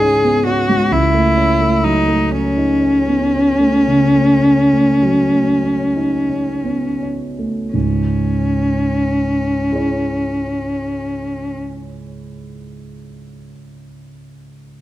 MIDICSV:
0, 0, Header, 1, 3, 480
1, 0, Start_track
1, 0, Key_signature, 4, "minor"
1, 0, Tempo, 916031
1, 474, Time_signature, 12, 3, 24, 8
1, 960, Tempo, 972447
1, 1440, Tempo, 1060071
1, 1920, Tempo, 1153846
1, 2400, Tempo, 1271186
1, 2880, Tempo, 1445783
1, 3360, Tempo, 1321586
1, 4320, Tempo, 1392111
1, 4800, Tempo, 1339286
1, 5280, Tempo, 1295896
1, 5911, End_track
2, 0, Start_track
2, 0, Title_t, "Cello"
2, 0, Program_c, 0, 42
2, 0, Note_on_c, 0, 68, 53
2, 226, Note_off_c, 0, 68, 0
2, 244, Note_on_c, 0, 66, 53
2, 483, Note_on_c, 0, 64, 51
2, 491, Note_off_c, 0, 66, 0
2, 964, Note_on_c, 0, 63, 46
2, 972, Note_off_c, 0, 64, 0
2, 1198, Note_on_c, 0, 61, 53
2, 1206, Note_off_c, 0, 63, 0
2, 3124, Note_off_c, 0, 61, 0
2, 3358, Note_on_c, 0, 61, 29
2, 4718, Note_off_c, 0, 61, 0
2, 5911, End_track
3, 0, Start_track
3, 0, Title_t, "Grand piano"
3, 0, Program_c, 1, 0
3, 0, Control_c, 1, 64, 127
3, 0, Note_on_c, 1, 44, 29
3, 0, Note_on_c, 1, 52, 27
3, 0, Note_on_c, 1, 56, 27
3, 0, Note_on_c, 1, 61, 27
3, 0, Note_on_c, 1, 63, 21
3, 8, Note_off_c, 1, 61, 0
3, 8, Note_on_c, 1, 61, 29
3, 125, Note_on_c, 1, 59, 24
3, 192, Note_off_c, 1, 61, 0
3, 239, Note_off_c, 1, 59, 0
3, 244, Note_on_c, 1, 61, 30
3, 363, Note_off_c, 1, 56, 0
3, 363, Note_on_c, 1, 56, 27
3, 430, Note_off_c, 1, 61, 0
3, 477, Note_on_c, 1, 37, 30
3, 478, Note_off_c, 1, 56, 0
3, 484, Control_c, 1, 64, 0
3, 485, Note_off_c, 1, 52, 0
3, 485, Note_off_c, 1, 63, 0
3, 487, Note_off_c, 1, 44, 0
3, 571, Control_c, 1, 64, 127
3, 597, Note_on_c, 1, 57, 28
3, 719, Note_on_c, 1, 61, 31
3, 789, Note_off_c, 1, 57, 0
3, 844, Note_on_c, 1, 57, 28
3, 912, Note_off_c, 1, 61, 0
3, 965, Note_on_c, 1, 54, 24
3, 1033, Note_off_c, 1, 57, 0
3, 1081, Note_on_c, 1, 57, 29
3, 1151, Note_off_c, 1, 54, 0
3, 1199, Note_on_c, 1, 61, 27
3, 1270, Note_off_c, 1, 57, 0
3, 1324, Note_on_c, 1, 63, 23
3, 1392, Note_off_c, 1, 61, 0
3, 1442, Note_on_c, 1, 61, 26
3, 1444, Note_off_c, 1, 63, 0
3, 1564, Note_on_c, 1, 59, 20
3, 1628, Note_off_c, 1, 61, 0
3, 1679, Note_off_c, 1, 59, 0
3, 1682, Note_on_c, 1, 61, 29
3, 1800, Note_on_c, 1, 57, 24
3, 1874, Note_off_c, 1, 61, 0
3, 1904, Note_off_c, 1, 37, 0
3, 1924, Note_on_c, 1, 49, 23
3, 1992, Note_off_c, 1, 57, 0
3, 2036, Note_on_c, 1, 57, 24
3, 2109, Note_off_c, 1, 49, 0
3, 2162, Note_on_c, 1, 61, 26
3, 2228, Note_off_c, 1, 57, 0
3, 2280, Note_on_c, 1, 57, 21
3, 2353, Note_off_c, 1, 61, 0
3, 2402, Note_on_c, 1, 54, 24
3, 2470, Note_off_c, 1, 57, 0
3, 2517, Note_on_c, 1, 57, 21
3, 2585, Note_off_c, 1, 54, 0
3, 2633, Note_on_c, 1, 61, 23
3, 2705, Note_off_c, 1, 57, 0
3, 2756, Note_on_c, 1, 63, 19
3, 2829, Note_off_c, 1, 61, 0
3, 2882, Note_off_c, 1, 63, 0
3, 2882, Note_on_c, 1, 61, 21
3, 2996, Note_on_c, 1, 59, 16
3, 3073, Note_off_c, 1, 61, 0
3, 3122, Note_off_c, 1, 59, 0
3, 3124, Note_on_c, 1, 61, 20
3, 3244, Note_on_c, 1, 57, 18
3, 3316, Note_off_c, 1, 61, 0
3, 3359, Note_off_c, 1, 57, 0
3, 3360, Note_on_c, 1, 37, 18
3, 3360, Note_on_c, 1, 44, 18
3, 3369, Control_c, 1, 64, 0
3, 3457, Control_c, 1, 64, 127
3, 4078, Note_on_c, 1, 64, 17
3, 4084, Note_on_c, 1, 68, 18
3, 4094, Note_on_c, 1, 73, 18
3, 4720, Note_off_c, 1, 37, 0
3, 4720, Note_off_c, 1, 44, 0
3, 5430, Note_off_c, 1, 64, 0
3, 5436, Note_off_c, 1, 68, 0
3, 5446, Note_off_c, 1, 73, 0
3, 5911, End_track
0, 0, End_of_file